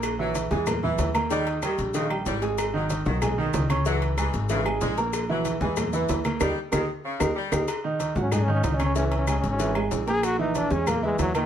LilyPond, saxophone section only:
\new Staff \with { instrumentName = "Saxophone section" } { \clef bass \time 4/4 \key fis \mixolydian \tempo 4 = 188 r8 fis4 e4 e4. | g4 dis4 cis4 g4 | r8 fis4 dis4 dis4. | fis4 e4 cis4 gis4 |
r8 fis4 e4 e4. | g4 dis4 cis4 g4 | r1 | r1 |
r1 | }